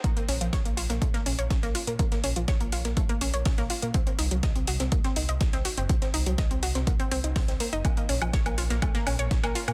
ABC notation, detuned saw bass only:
X:1
M:4/4
L:1/16
Q:1/4=123
K:Bbm
V:1 name="Detuned saw bass" clef=bass
B,,, z B,,, B,,, B,,, B,,, B,,, B,,, B,,, z B,,, B,,, B,,, B,,, z B,, | B,,, z B,,, B,,, B,,, B,,, B,,, B,,, B,,, z B,,, B,,, B,,, B,,, z B,, | C,, z C,, C,, C,, C,, C,, C,, C,, z C,, C,, C,, C,, z G,,, | C,, z C,, C,, C,, C,, C,, C,, C,, z C,, C,, C,, C,, z G,,, |
B,,, z B,,, B,,, B,,, B,,, B,,, B,,, B,,, z B,,, B,,, B,,, B,,, z B,, |]